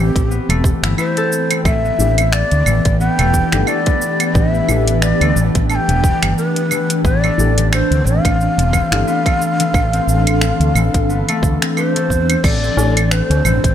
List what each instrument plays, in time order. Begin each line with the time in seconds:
Already playing: harp E3 A3 C4, ambient pad C4, ney G4
0.16 fretless electric bass A1, kick, closed hi-hat, cabasa
0.30 harp B3, cabasa
0.49 fretless electric bass E1, harp A3, closed hi-hat, cabasa, claves
0.64 kick, cabasa
0.83 fretless electric bass G1, harp E4, finger snap, closed hi-hat, cabasa
0.98 harp E4, ney C5, cabasa, claves
1.17 harp A4, closed hi-hat, cabasa
1.32 cabasa
1.51 harp C4, closed hi-hat, cabasa, claves
1.65 fretless electric bass A1, ambient pad E3, harp A3, ney E5, kick, cabasa, claves
1.77 ambient pad B3
1.85 harp B3, cabasa
1.91 ambient pad G4
1.98 fretless electric bass A1, felt piano E3 A3 D4 G4, cabasa
2.18 closed hi-hat, cabasa, claves
2.33 ney D5, finger snap, cabasa
2.41 ambient pad D4
2.51 fretless electric bass D2, closed hi-hat, cabasa
2.66 fretless electric bass A1, harp E3, cabasa, claves
2.78 ambient pad B4
2.85 fretless electric bass A1, kick, closed hi-hat, cabasa
3.00 harp B3, ney G5, cabasa
3.19 fretless electric bass E1, harp A3, closed hi-hat, cabasa, claves
3.34 kick, cabasa
3.52 fretless electric bass G1, felt piano E3 A3 D4 G4, harp E3, finger snap, closed hi-hat, cabasa
3.67 harp A3, ney D5, cabasa, claves
3.86 harp B3, kick, closed hi-hat, cabasa
4.02 cabasa
4.20 closed hi-hat, cabasa, claves
4.35 fretless electric bass A1, ney E5, kick, cabasa
4.54 cabasa
4.68 fretless electric bass A1, felt piano E3 A3 D4 G4, harp E3, cabasa, claves
4.88 closed hi-hat, cabasa
5.02 harp B3, ney D5, finger snap, cabasa
5.21 fretless electric bass D2, harp A3, closed hi-hat, cabasa, claves
5.36 fretless electric bass A1, cabasa
5.55 fretless electric bass A1, harp E3, kick, closed hi-hat, cabasa
5.70 harp A3, ney A5, cabasa, claves
5.75 ney G5
5.89 fretless electric bass E1, harp B3, closed hi-hat, cabasa
6.04 kick, cabasa
6.23 fretless electric bass G1, finger snap, closed hi-hat, cabasa, claves
6.38 ney B4, cabasa
6.56 closed hi-hat, cabasa
6.71 harp E3, cabasa, claves
6.90 closed hi-hat, cabasa
7.04 fretless electric bass A1, harp B3, ney D5, kick, cabasa
7.24 harp A3, cabasa, claves
7.37 fretless electric bass A1, felt piano E3 A3 D4 G4, cabasa
7.43 ambient pad C6
7.58 harp E3, closed hi-hat, cabasa
7.72 harp A3, ney C5, finger snap, cabasa, claves
7.91 fretless electric bass D2, harp C4, closed hi-hat, cabasa
8.06 fretless electric bass A1, ney F5, cabasa
8.25 fretless electric bass A1, kick, closed hi-hat, cabasa, claves
8.33 ambient pad A4
8.41 cabasa
8.58 fretless electric bass E1, closed hi-hat, cabasa
8.73 harp E3, kick, cabasa, claves
8.92 fretless electric bass G1, felt piano E3 A3 D4 G4, finger snap, closed hi-hat, cabasa
9.07 harp B3, cabasa
9.26 harp A3, kick, closed hi-hat, cabasa, claves
9.41 cabasa
9.60 harp E3, closed hi-hat, cabasa
9.74 fretless electric bass A1, harp A3, kick, cabasa, claves
9.93 harp C4, closed hi-hat, cabasa
10.07 fretless electric bass A1, cabasa
10.27 closed hi-hat, cabasa, claves
10.41 finger snap, cabasa
10.60 fretless electric bass D2, closed hi-hat, cabasa
10.75 fretless electric bass A1, harp E3, cabasa, claves
10.94 fretless electric bass A1, kick, closed hi-hat, cabasa
11.08 fretless electric bass G1, harp B3, cabasa
11.29 harp A3, closed hi-hat, cabasa, claves
11.43 fretless electric bass D2, kick, cabasa
11.62 harp C4, finger snap, closed hi-hat, cabasa
11.77 harp G4, ney C5, cabasa, claves
11.96 harp A3, closed hi-hat, cabasa
12.10 fretless electric bass E2, kick, cabasa
12.30 closed hi-hat, cabasa, claves
12.44 fretless electric bass A1, ambient pad E3, harp A3, ney D5, kick, crash, cabasa, claves
12.52 ambient pad A3
12.63 harp C4, tabla tin, cabasa
12.77 fretless electric bass A1, felt piano E3 A3 D4 G4, tabla na, tabla tin, cabasa
12.86 ambient pad G4
12.97 closed hi-hat, cabasa, claves
13.11 ney C5, finger snap, cabasa
13.30 fretless electric bass D2, closed hi-hat, tabla na, cabasa
13.45 fretless electric bass A1, harp E3, tabla ge, cabasa, claves
13.64 fretless electric bass A1, kick, closed hi-hat, cabasa